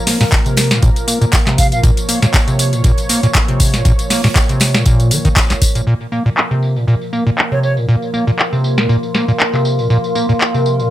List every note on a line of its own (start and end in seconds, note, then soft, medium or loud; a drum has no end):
0.00 5.83 F3 medium
0.00 5.83 A#3 medium
0.00 1.82 A#4 medium
0.07 0.18 A#3 medium
0.07 snare soft
0.07 open hi-hat loud
0.07 open hi-hat medium
0.07 tambourine medium
0.21 0.25 A#2 loud
0.21 snare soft
0.21 closed hi-hat soft
0.21 tambourine soft
0.32 kick loud
0.32 snare loud
0.32 clap loud
0.32 closed hi-hat medium
0.32 tambourine soft
0.46 0.73 C3 medium
0.46 closed hi-hat soft
0.46 tambourine soft
0.57 snare medium
0.57 closed hi-hat medium
0.57 open hi-hat loud
0.57 tambourine medium
0.71 0.81 A#2 medium
0.71 snare medium
0.71 closed hi-hat soft
0.71 tambourine soft
0.82 0.90 A#2 loud
0.82 kick loud
0.82 closed hi-hat medium
0.82 tambourine soft
0.96 closed hi-hat soft
0.96 tambourine soft
1.08 1.19 A#3 medium
1.08 closed hi-hat medium
1.08 open hi-hat loud
1.08 tambourine medium
1.21 1.25 A#2 loud
1.21 closed hi-hat soft
1.21 tambourine soft
1.32 kick loud
1.32 snare loud
1.32 clap loud
1.32 closed hi-hat medium
1.32 tambourine soft
1.47 1.73 C3 medium
1.47 snare soft
1.47 clap soft
1.47 closed hi-hat soft
1.58 1.67 F5 medium
1.58 kick medium
1.58 closed hi-hat medium
1.58 open hi-hat loud
1.58 tambourine medium
1.72 1.81 A#2 medium
1.72 1.79 F5 medium
1.72 closed hi-hat soft
1.72 tambourine soft
1.83 1.91 A#2 loud
1.83 5.86 C#5 medium
1.83 kick loud
1.83 closed hi-hat medium
1.83 tambourine soft
1.97 closed hi-hat soft
1.97 tambourine soft
2.09 2.20 A#3 medium
2.09 closed hi-hat medium
2.09 open hi-hat loud
2.09 tambourine medium
2.22 2.26 A#2 loud
2.22 snare soft
2.22 closed hi-hat soft
2.22 tambourine soft
2.34 kick loud
2.34 snare loud
2.34 clap loud
2.34 closed hi-hat medium
2.34 tambourine soft
2.48 2.74 C3 medium
2.48 closed hi-hat soft
2.48 tambourine soft
2.59 closed hi-hat medium
2.59 open hi-hat loud
2.59 tambourine medium
2.73 2.82 A#2 medium
2.73 closed hi-hat soft
2.73 tambourine soft
2.84 2.92 A#2 loud
2.84 kick loud
2.84 closed hi-hat medium
2.84 tambourine soft
2.98 closed hi-hat soft
2.98 tambourine soft
3.09 3.21 A#3 medium
3.09 snare soft
3.09 closed hi-hat medium
3.09 open hi-hat loud
3.09 tambourine medium
3.23 3.27 A#2 loud
3.23 closed hi-hat soft
3.23 tambourine soft
3.34 kick loud
3.34 snare loud
3.34 clap loud
3.34 closed hi-hat medium
3.34 tambourine soft
3.48 3.75 C3 medium
3.48 closed hi-hat soft
3.60 kick medium
3.60 closed hi-hat medium
3.60 open hi-hat loud
3.60 tambourine medium
3.74 3.83 A#2 medium
3.74 snare soft
3.74 closed hi-hat soft
3.74 tambourine soft
3.85 3.93 A#2 loud
3.85 kick loud
3.85 closed hi-hat medium
3.85 tambourine soft
3.99 closed hi-hat soft
3.99 tambourine soft
4.10 4.22 A#3 medium
4.10 snare soft
4.10 open hi-hat medium
4.10 open hi-hat loud
4.10 tambourine medium
4.24 4.28 A#2 loud
4.24 snare soft
4.24 closed hi-hat soft
4.24 tambourine soft
4.36 kick loud
4.36 snare loud
4.36 clap loud
4.36 closed hi-hat medium
4.36 tambourine soft
4.49 4.76 C3 medium
4.49 closed hi-hat soft
4.49 tambourine soft
4.60 snare medium
4.60 closed hi-hat medium
4.60 open hi-hat loud
4.60 tambourine medium
4.75 4.84 A#2 medium
4.75 snare medium
4.75 closed hi-hat soft
4.75 tambourine soft
4.86 5.13 A#2 loud
4.86 kick loud
4.86 closed hi-hat medium
4.86 tambourine soft
5.00 closed hi-hat soft
5.00 tambourine soft
5.11 5.19 D#3 loud
5.11 closed hi-hat medium
5.11 open hi-hat loud
5.11 tambourine medium
5.25 5.29 D#3 loud
5.25 kick medium
5.25 closed hi-hat soft
5.25 tambourine soft
5.36 kick loud
5.36 snare loud
5.36 clap loud
5.36 closed hi-hat medium
5.36 tambourine soft
5.50 5.54 A#1 medium
5.50 snare soft
5.50 clap soft
5.50 closed hi-hat soft
5.50 tambourine soft
5.62 kick medium
5.62 closed hi-hat medium
5.62 open hi-hat loud
5.62 tambourine medium
5.75 5.82 A#2 medium
5.75 closed hi-hat soft
5.75 tambourine soft
5.87 5.94 A#2 loud
5.87 10.90 F3 medium
5.87 10.90 A#3 medium
5.87 10.90 A#4 medium
5.87 tambourine soft
6.01 tambourine soft
6.12 6.23 A#3 medium
6.12 tambourine medium
6.26 6.30 A#2 loud
6.26 tambourine soft
6.37 clap loud
6.37 tambourine soft
6.42 10.90 F5 medium
6.51 6.78 C3 medium
6.51 tambourine soft
6.62 tambourine medium
6.76 6.86 A#2 medium
6.76 tambourine soft
6.88 6.95 A#2 loud
6.88 tambourine soft
7.01 tambourine soft
7.13 7.24 A#3 medium
7.13 tambourine medium
7.27 7.30 A#2 loud
7.27 tambourine soft
7.36 10.90 C6 medium
7.36 clap loud
7.36 tambourine soft
7.52 7.78 C3 medium
7.52 7.59 C#5 medium
7.63 7.72 C#5 medium
7.63 tambourine medium
7.77 7.86 A#2 medium
7.77 tambourine soft
7.88 7.96 A#2 loud
7.88 tambourine soft
8.02 tambourine soft
8.14 8.25 A#3 medium
8.14 tambourine medium
8.27 8.31 A#2 loud
8.27 tambourine soft
8.39 clap loud
8.39 tambourine soft
8.53 8.79 C3 medium
8.53 tambourine soft
8.64 tambourine medium
8.78 8.87 A#2 medium
8.78 snare medium
8.78 tambourine soft
8.89 8.97 A#2 loud
8.89 tambourine soft
9.03 tambourine soft
9.15 9.26 A#3 medium
9.15 snare medium
9.15 tambourine medium
9.28 9.32 A#2 loud
9.28 tambourine soft
9.40 clap loud
9.40 tambourine soft
9.53 9.80 C3 medium
9.53 clap soft
9.53 tambourine soft
9.65 tambourine medium
9.79 9.88 A#2 medium
9.79 tambourine soft
9.90 9.98 A#2 loud
9.90 tambourine soft
10.04 tambourine soft
10.15 10.27 A#3 medium
10.15 tambourine medium
10.29 10.33 A#2 loud
10.29 tambourine soft
10.41 clap loud
10.41 tambourine soft
10.54 10.81 C3 medium
10.54 tambourine soft
10.66 tambourine medium
10.80 10.89 A#2 medium
10.80 tambourine soft